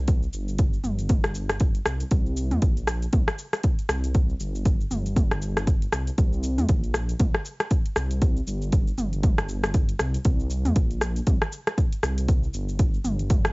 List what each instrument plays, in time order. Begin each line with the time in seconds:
Already playing: detuned saw bass C2
0.08 kick, closed hi-hat, shaker
0.23 shaker
0.33 detuned saw bass G1, shaker
0.48 shaker
0.58 kick, closed hi-hat, shaker
0.73 shaker
0.84 detuned saw bass G1, mid tom, shaker
0.99 closed hi-hat, shaker
1.09 kick, closed hi-hat, mid tom, shaker
1.24 cross-stick, closed hi-hat, shaker
1.35 shaker
1.49 cross-stick, closed hi-hat, shaker
1.60 kick, closed hi-hat, shaker
1.75 closed hi-hat, shaker
1.86 detuned saw bass C2, cross-stick, shaker
2.00 closed hi-hat, shaker
2.11 detuned saw bass C2, kick, closed hi-hat, shaker
2.26 shaker
2.37 shaker
2.51 detuned saw bass F2, closed hi-hat, mid tom, shaker
2.62 detuned saw bass A#1, kick, closed hi-hat, shaker
2.77 closed hi-hat, shaker
2.87 cross-stick, shaker
3.02 closed hi-hat, shaker
3.13 detuned saw bass C2, kick, closed hi-hat, mid tom, shaker
3.28 cross-stick, shaker
3.38 shaker
3.53 cross-stick, closed hi-hat, shaker
3.63 kick, closed hi-hat, shaker
3.79 closed hi-hat, shaker
3.89 detuned saw bass C2, cross-stick, shaker
4.04 closed hi-hat, shaker
4.14 kick, closed hi-hat, shaker
4.29 shaker
4.40 detuned saw bass G1, shaker
4.55 shaker
4.65 kick, closed hi-hat, shaker
4.80 shaker
4.91 detuned saw bass G1, mid tom, shaker
5.06 closed hi-hat, shaker
5.16 kick, closed hi-hat, mid tom, shaker
5.31 cross-stick, closed hi-hat, shaker
5.42 shaker
5.57 cross-stick, closed hi-hat, shaker
5.67 kick, closed hi-hat, shaker
5.82 closed hi-hat, shaker
5.93 detuned saw bass C2, cross-stick, shaker
6.07 closed hi-hat, shaker
6.18 detuned saw bass C2, kick, closed hi-hat, shaker
6.33 shaker
6.43 shaker
6.58 detuned saw bass F2, closed hi-hat, mid tom, shaker
6.69 detuned saw bass A#1, kick, closed hi-hat, shaker
6.84 closed hi-hat, shaker
6.94 cross-stick, shaker
7.09 closed hi-hat, shaker
7.20 detuned saw bass C2, kick, closed hi-hat, mid tom, shaker
7.34 cross-stick, shaker
7.45 shaker
7.60 cross-stick, closed hi-hat, shaker
7.71 kick, closed hi-hat, shaker
7.86 closed hi-hat, shaker
7.96 detuned saw bass C2, cross-stick, shaker
8.11 closed hi-hat, shaker
8.22 kick, closed hi-hat, shaker
8.37 shaker
8.47 detuned saw bass G1, shaker
8.62 shaker
8.72 kick, closed hi-hat, shaker
8.87 shaker
8.98 detuned saw bass G1, mid tom, shaker
9.13 closed hi-hat, shaker
9.23 kick, closed hi-hat, mid tom, shaker
9.38 cross-stick, closed hi-hat, shaker
9.49 shaker
9.64 cross-stick, closed hi-hat, shaker
9.74 kick, closed hi-hat, shaker
9.89 closed hi-hat, shaker
9.99 detuned saw bass C2, cross-stick, shaker
10.14 closed hi-hat, shaker
10.25 detuned saw bass C2, kick, closed hi-hat, shaker
10.40 shaker
10.50 shaker
10.65 detuned saw bass F2, closed hi-hat, mid tom, shaker
10.76 detuned saw bass A#1, kick, closed hi-hat, shaker
10.91 closed hi-hat, shaker
11.01 cross-stick, shaker
11.16 closed hi-hat, shaker
11.27 detuned saw bass C2, kick, closed hi-hat, mid tom, shaker
11.42 cross-stick, shaker
11.52 shaker
11.67 cross-stick, closed hi-hat, shaker
11.78 kick, closed hi-hat, shaker
11.92 closed hi-hat, shaker
12.03 detuned saw bass C2, cross-stick, shaker
12.18 closed hi-hat, shaker
12.28 kick, closed hi-hat, shaker
12.43 shaker
12.54 detuned saw bass G1, shaker
12.69 shaker
12.79 kick, closed hi-hat, shaker
12.94 shaker
13.05 detuned saw bass G1, mid tom, shaker
13.19 closed hi-hat, shaker
13.30 kick, closed hi-hat, mid tom, shaker
13.45 cross-stick, closed hi-hat, shaker